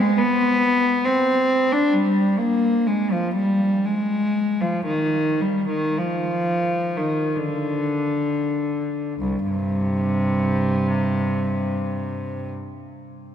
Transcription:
0, 0, Header, 1, 2, 480
1, 0, Start_track
1, 0, Key_signature, -3, "minor"
1, 0, Tempo, 869565
1, 1070, Time_signature, 3, 2, 24, 8
1, 1070, Tempo, 916031
1, 1550, Tempo, 998336
1, 2510, Tempo, 1127820
1, 2990, Tempo, 1369863
1, 3470, Tempo, 1869159
1, 3950, Tempo, 1546392
1, 5232, End_track
2, 0, Start_track
2, 0, Title_t, "Cello"
2, 0, Program_c, 0, 42
2, 0, Note_on_c, 0, 56, 68
2, 102, Note_on_c, 0, 59, 77
2, 107, Note_off_c, 0, 56, 0
2, 580, Note_on_c, 0, 60, 66
2, 586, Note_off_c, 0, 59, 0
2, 946, Note_off_c, 0, 60, 0
2, 950, Note_on_c, 0, 62, 60
2, 1067, Note_on_c, 0, 55, 58
2, 1070, Note_off_c, 0, 62, 0
2, 1302, Note_on_c, 0, 58, 63
2, 1303, Note_off_c, 0, 55, 0
2, 1549, Note_off_c, 0, 58, 0
2, 1556, Note_on_c, 0, 56, 58
2, 1669, Note_off_c, 0, 56, 0
2, 1676, Note_on_c, 0, 53, 53
2, 1788, Note_off_c, 0, 53, 0
2, 1789, Note_on_c, 0, 55, 58
2, 2018, Note_off_c, 0, 55, 0
2, 2029, Note_on_c, 0, 56, 57
2, 2390, Note_off_c, 0, 56, 0
2, 2395, Note_on_c, 0, 53, 47
2, 2515, Note_off_c, 0, 53, 0
2, 2515, Note_on_c, 0, 51, 55
2, 2739, Note_off_c, 0, 51, 0
2, 2746, Note_on_c, 0, 55, 49
2, 2865, Note_off_c, 0, 55, 0
2, 2868, Note_on_c, 0, 51, 47
2, 2990, Note_off_c, 0, 51, 0
2, 2990, Note_on_c, 0, 53, 53
2, 3339, Note_off_c, 0, 53, 0
2, 3339, Note_on_c, 0, 51, 42
2, 3470, Note_off_c, 0, 51, 0
2, 3473, Note_on_c, 0, 50, 48
2, 3947, Note_on_c, 0, 36, 46
2, 3952, Note_off_c, 0, 50, 0
2, 4036, Note_off_c, 0, 36, 0
2, 4036, Note_on_c, 0, 43, 44
2, 4036, Note_on_c, 0, 48, 47
2, 4955, Note_off_c, 0, 48, 0
2, 4980, Note_off_c, 0, 43, 0
2, 5232, End_track
0, 0, End_of_file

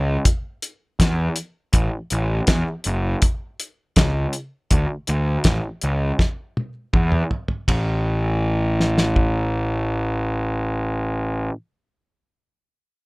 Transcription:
0, 0, Header, 1, 3, 480
1, 0, Start_track
1, 0, Tempo, 743494
1, 1118, Time_signature, 4, 2, 24, 8
1, 8426, End_track
2, 0, Start_track
2, 0, Title_t, "Picked electric bass"
2, 0, Program_c, 0, 34
2, 0, Note_on_c, 0, 37, 76
2, 106, Note_off_c, 0, 37, 0
2, 643, Note_on_c, 0, 40, 74
2, 825, Note_off_c, 0, 40, 0
2, 1120, Note_on_c, 0, 33, 76
2, 1211, Note_off_c, 0, 33, 0
2, 1368, Note_on_c, 0, 33, 78
2, 1547, Note_off_c, 0, 33, 0
2, 1602, Note_on_c, 0, 40, 92
2, 1692, Note_off_c, 0, 40, 0
2, 1848, Note_on_c, 0, 30, 74
2, 2027, Note_off_c, 0, 30, 0
2, 2565, Note_on_c, 0, 37, 76
2, 2745, Note_off_c, 0, 37, 0
2, 3044, Note_on_c, 0, 38, 71
2, 3133, Note_off_c, 0, 38, 0
2, 3285, Note_on_c, 0, 38, 74
2, 3465, Note_off_c, 0, 38, 0
2, 3523, Note_on_c, 0, 33, 87
2, 3612, Note_off_c, 0, 33, 0
2, 3768, Note_on_c, 0, 37, 72
2, 3947, Note_off_c, 0, 37, 0
2, 4480, Note_on_c, 0, 40, 64
2, 4662, Note_off_c, 0, 40, 0
2, 4962, Note_on_c, 0, 33, 71
2, 7417, Note_off_c, 0, 33, 0
2, 8426, End_track
3, 0, Start_track
3, 0, Title_t, "Drums"
3, 163, Note_on_c, 9, 42, 81
3, 164, Note_on_c, 9, 36, 95
3, 227, Note_off_c, 9, 42, 0
3, 229, Note_off_c, 9, 36, 0
3, 403, Note_on_c, 9, 42, 50
3, 467, Note_off_c, 9, 42, 0
3, 644, Note_on_c, 9, 36, 103
3, 645, Note_on_c, 9, 42, 79
3, 652, Note_on_c, 9, 38, 92
3, 709, Note_off_c, 9, 36, 0
3, 709, Note_off_c, 9, 42, 0
3, 717, Note_off_c, 9, 38, 0
3, 876, Note_on_c, 9, 42, 56
3, 941, Note_off_c, 9, 42, 0
3, 1117, Note_on_c, 9, 42, 76
3, 1121, Note_on_c, 9, 36, 86
3, 1181, Note_off_c, 9, 42, 0
3, 1185, Note_off_c, 9, 36, 0
3, 1358, Note_on_c, 9, 42, 50
3, 1422, Note_off_c, 9, 42, 0
3, 1595, Note_on_c, 9, 42, 67
3, 1600, Note_on_c, 9, 36, 86
3, 1602, Note_on_c, 9, 38, 103
3, 1659, Note_off_c, 9, 42, 0
3, 1665, Note_off_c, 9, 36, 0
3, 1666, Note_off_c, 9, 38, 0
3, 1834, Note_on_c, 9, 42, 53
3, 1898, Note_off_c, 9, 42, 0
3, 2077, Note_on_c, 9, 42, 69
3, 2082, Note_on_c, 9, 36, 95
3, 2142, Note_off_c, 9, 42, 0
3, 2146, Note_off_c, 9, 36, 0
3, 2321, Note_on_c, 9, 42, 51
3, 2386, Note_off_c, 9, 42, 0
3, 2557, Note_on_c, 9, 42, 64
3, 2561, Note_on_c, 9, 36, 96
3, 2564, Note_on_c, 9, 38, 103
3, 2622, Note_off_c, 9, 42, 0
3, 2626, Note_off_c, 9, 36, 0
3, 2629, Note_off_c, 9, 38, 0
3, 2795, Note_on_c, 9, 42, 47
3, 2859, Note_off_c, 9, 42, 0
3, 3038, Note_on_c, 9, 42, 69
3, 3041, Note_on_c, 9, 36, 82
3, 3103, Note_off_c, 9, 42, 0
3, 3106, Note_off_c, 9, 36, 0
3, 3275, Note_on_c, 9, 42, 44
3, 3340, Note_off_c, 9, 42, 0
3, 3512, Note_on_c, 9, 42, 70
3, 3518, Note_on_c, 9, 36, 93
3, 3519, Note_on_c, 9, 38, 87
3, 3576, Note_off_c, 9, 42, 0
3, 3583, Note_off_c, 9, 36, 0
3, 3583, Note_off_c, 9, 38, 0
3, 3754, Note_on_c, 9, 42, 49
3, 3819, Note_off_c, 9, 42, 0
3, 3997, Note_on_c, 9, 36, 81
3, 4001, Note_on_c, 9, 38, 44
3, 4062, Note_off_c, 9, 36, 0
3, 4066, Note_off_c, 9, 38, 0
3, 4242, Note_on_c, 9, 48, 52
3, 4306, Note_off_c, 9, 48, 0
3, 4476, Note_on_c, 9, 47, 59
3, 4478, Note_on_c, 9, 36, 91
3, 4541, Note_off_c, 9, 47, 0
3, 4543, Note_off_c, 9, 36, 0
3, 4595, Note_on_c, 9, 45, 56
3, 4660, Note_off_c, 9, 45, 0
3, 4718, Note_on_c, 9, 43, 63
3, 4782, Note_off_c, 9, 43, 0
3, 4832, Note_on_c, 9, 43, 61
3, 4896, Note_off_c, 9, 43, 0
3, 4958, Note_on_c, 9, 36, 59
3, 4961, Note_on_c, 9, 51, 70
3, 5022, Note_off_c, 9, 36, 0
3, 5026, Note_off_c, 9, 51, 0
3, 5683, Note_on_c, 9, 38, 41
3, 5747, Note_off_c, 9, 38, 0
3, 5796, Note_on_c, 9, 38, 57
3, 5860, Note_off_c, 9, 38, 0
3, 5915, Note_on_c, 9, 36, 69
3, 5980, Note_off_c, 9, 36, 0
3, 8426, End_track
0, 0, End_of_file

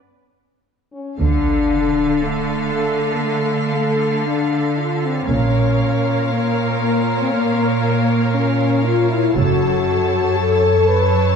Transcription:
0, 0, Header, 1, 8, 480
1, 0, Start_track
1, 0, Key_signature, -1, "minor"
1, 0, Tempo, 517241
1, 1108, Time_signature, 4, 2, 24, 8
1, 3013, Tempo, 508044
1, 10676, End_track
2, 0, Start_track
2, 0, Title_t, "Violin section"
2, 0, Program_c, 0, 48
2, 1114, Note_on_c, 0, 77, 40
2, 4906, Note_off_c, 0, 77, 0
2, 4949, Note_on_c, 0, 77, 43
2, 8746, Note_off_c, 0, 77, 0
2, 8782, Note_on_c, 0, 81, 55
2, 10676, Note_off_c, 0, 81, 0
2, 10676, End_track
3, 0, Start_track
3, 0, Title_t, "Violin section"
3, 0, Program_c, 1, 48
3, 1112, Note_on_c, 1, 69, 37
3, 4905, Note_off_c, 1, 69, 0
3, 4935, Note_on_c, 1, 73, 39
3, 8739, Note_off_c, 1, 73, 0
3, 8789, Note_on_c, 1, 73, 54
3, 10676, Note_off_c, 1, 73, 0
3, 10676, End_track
4, 0, Start_track
4, 0, Title_t, "Viola section"
4, 0, Program_c, 2, 48
4, 1103, Note_on_c, 2, 69, 35
4, 4901, Note_off_c, 2, 69, 0
4, 4941, Note_on_c, 2, 70, 41
4, 8779, Note_off_c, 2, 70, 0
4, 8789, Note_on_c, 2, 69, 49
4, 10676, Note_off_c, 2, 69, 0
4, 10676, End_track
5, 0, Start_track
5, 0, Title_t, "French horn section"
5, 0, Program_c, 3, 60
5, 860, Note_on_c, 3, 61, 42
5, 1088, Note_off_c, 3, 61, 0
5, 1105, Note_on_c, 3, 62, 53
5, 2043, Note_off_c, 3, 62, 0
5, 2061, Note_on_c, 3, 57, 48
5, 2522, Note_off_c, 3, 57, 0
5, 2533, Note_on_c, 3, 57, 51
5, 2885, Note_off_c, 3, 57, 0
5, 2894, Note_on_c, 3, 58, 47
5, 2995, Note_on_c, 3, 57, 48
5, 3013, Note_off_c, 3, 58, 0
5, 3468, Note_off_c, 3, 57, 0
5, 3479, Note_on_c, 3, 57, 52
5, 3959, Note_off_c, 3, 57, 0
5, 3968, Note_on_c, 3, 62, 56
5, 4444, Note_off_c, 3, 62, 0
5, 4458, Note_on_c, 3, 65, 56
5, 4700, Note_off_c, 3, 65, 0
5, 4702, Note_on_c, 3, 60, 50
5, 4937, Note_on_c, 3, 61, 45
5, 4942, Note_off_c, 3, 60, 0
5, 5899, Note_on_c, 3, 58, 53
5, 5903, Note_off_c, 3, 61, 0
5, 6373, Note_off_c, 3, 58, 0
5, 6384, Note_on_c, 3, 58, 56
5, 6738, Note_off_c, 3, 58, 0
5, 6753, Note_on_c, 3, 60, 55
5, 6867, Note_on_c, 3, 58, 61
5, 6869, Note_off_c, 3, 60, 0
5, 7199, Note_off_c, 3, 58, 0
5, 7337, Note_on_c, 3, 58, 62
5, 7808, Note_off_c, 3, 58, 0
5, 7813, Note_on_c, 3, 61, 59
5, 8286, Note_off_c, 3, 61, 0
5, 8303, Note_on_c, 3, 65, 67
5, 8532, Note_on_c, 3, 64, 59
5, 8541, Note_off_c, 3, 65, 0
5, 8774, Note_on_c, 3, 66, 64
5, 8775, Note_off_c, 3, 64, 0
5, 9734, Note_on_c, 3, 69, 75
5, 9735, Note_off_c, 3, 66, 0
5, 10210, Note_on_c, 3, 71, 81
5, 10214, Note_off_c, 3, 69, 0
5, 10676, Note_off_c, 3, 71, 0
5, 10676, End_track
6, 0, Start_track
6, 0, Title_t, "Cello section"
6, 0, Program_c, 4, 48
6, 1113, Note_on_c, 4, 50, 38
6, 4905, Note_off_c, 4, 50, 0
6, 4946, Note_on_c, 4, 46, 42
6, 8782, Note_off_c, 4, 46, 0
6, 8786, Note_on_c, 4, 42, 48
6, 10676, Note_off_c, 4, 42, 0
6, 10676, End_track
7, 0, Start_track
7, 0, Title_t, "Double bass section"
7, 0, Program_c, 5, 48
7, 1106, Note_on_c, 5, 38, 39
7, 1553, Note_off_c, 5, 38, 0
7, 4944, Note_on_c, 5, 34, 44
7, 5391, Note_off_c, 5, 34, 0
7, 8790, Note_on_c, 5, 30, 51
7, 9231, Note_off_c, 5, 30, 0
7, 10676, End_track
8, 0, Start_track
8, 0, Title_t, "Sub drop"
8, 0, Program_c, 6, 103
8, 1108, Note_on_c, 6, 60, 39
8, 3014, Note_off_c, 6, 60, 0
8, 10676, End_track
0, 0, End_of_file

